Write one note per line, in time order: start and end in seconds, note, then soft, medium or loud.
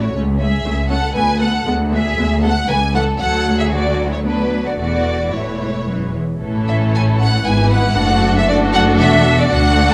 0.00 0.10 A1 medium
0.00 0.10 A2 medium
0.00 0.14 A3 medium
0.00 0.06 E4 medium
0.00 0.15 F#4 medium
0.00 0.13 C#5 medium
0.13 0.58 C#2 medium
0.13 0.59 C#2 medium
0.13 0.23 A3 medium
0.13 0.23 C#4 medium
0.38 0.48 A3 medium
0.38 0.48 C#4 medium
0.38 0.86 G#4 medium
0.38 0.86 E5 medium
0.64 1.10 C#2 medium
0.64 0.73 A3 medium
0.64 0.73 C#4 medium
0.88 0.98 A3 medium
0.88 0.98 C#4 medium
0.88 1.16 A4 medium
0.88 1.14 F#5 loud
1.15 1.61 D2 medium
1.15 1.24 A3 medium
1.15 1.24 B3 medium
1.15 1.41 B4 medium
1.15 1.41 G#5 loud
1.41 1.50 A3 medium
1.41 1.50 B3 medium
1.41 1.67 A4 medium
1.41 1.66 F#5 medium
1.67 2.12 D2 medium
1.67 1.75 G#3 medium
1.67 1.75 B3 medium
1.92 2.00 G#3 medium
1.92 2.00 B3 medium
1.92 2.40 G#4 medium
1.92 2.40 E5 loud
2.17 2.63 D2 medium
2.17 2.26 G#3 medium
2.17 2.25 B3 medium
2.42 2.50 G#3 medium
2.42 2.50 B3 medium
2.42 2.51 A4 medium
2.42 2.68 F#5 loud
2.68 3.14 C#2 medium
2.68 2.76 E3 medium
2.68 2.76 A3 medium
2.68 2.77 B4 medium
2.68 2.94 G#5 loud
2.94 3.02 E3 medium
2.94 3.02 A3 medium
2.94 3.18 A4 medium
2.94 3.02 F#5 loud
3.19 4.74 D2 medium
3.19 4.75 D2 medium
3.19 3.68 F#3 medium
3.19 3.68 A3 medium
3.19 3.58 A4 medium
3.19 3.58 F#5 loud
3.58 3.72 G#4 medium
3.58 3.64 E5 medium
3.71 4.24 F#3 medium
3.71 4.24 A3 medium
3.71 4.12 F#4 medium
3.71 4.11 D5 medium
4.11 4.25 E4 medium
4.11 4.18 C#5 medium
4.24 4.77 F#3 medium
4.24 4.79 B3 medium
4.24 4.64 D4 medium
4.24 4.65 B4 medium
4.65 4.70 F#4 medium
4.65 4.78 D5 medium
4.78 6.17 E1 medium
4.78 5.26 E2 medium
4.78 5.30 E3 medium
4.78 5.30 A3 medium
4.78 5.31 F#4 medium
4.78 5.32 D5 loud
5.31 5.58 A2 medium
5.31 5.85 E3 medium
5.31 5.85 A3 medium
5.31 6.13 E4 medium
5.31 6.14 C#5 medium
5.60 5.68 G#2 medium
5.86 6.13 F#2 medium
5.86 6.19 E3 medium
5.86 6.20 G#3 medium
6.14 6.40 E2 medium
6.39 7.41 A1 medium
6.39 7.41 A2 medium
6.39 7.40 E3 medium
6.39 7.40 C#4 medium
6.39 7.41 E4 medium
6.39 7.41 A4 medium
6.68 6.76 E5 medium
6.94 7.02 G#5 loud
7.21 7.45 F#5 loud
7.45 7.96 G#1 medium
7.45 7.96 G#2 medium
7.45 7.96 E3 medium
7.45 7.96 B3 medium
7.45 7.95 E4 medium
7.45 7.96 B4 medium
7.45 7.71 G#5 loud
7.71 8.34 F#5 loud
7.95 8.97 F#1 loud
7.95 8.97 F#2 medium
7.95 8.47 A3 medium
7.95 8.48 D4 medium
7.95 8.46 F#4 medium
7.95 8.46 A4 medium
8.37 8.49 E5 loud
8.47 9.49 A3 medium
8.47 9.49 D4 loud
8.47 9.48 F#4 loud
8.47 9.48 A4 loud
8.47 8.56 D5 loud
8.74 8.82 F#5 loud
8.99 9.50 E1 medium
8.99 9.51 E2 medium
8.99 9.37 E5 loud
9.39 9.51 D5 loud
9.50 9.94 D2 medium
9.50 9.94 D2 loud
9.50 9.94 A3 loud
9.50 9.94 D4 loud
9.50 9.94 F#4 loud
9.50 9.94 A4 loud
9.50 9.89 F#5 loud
9.89 9.94 A5 loud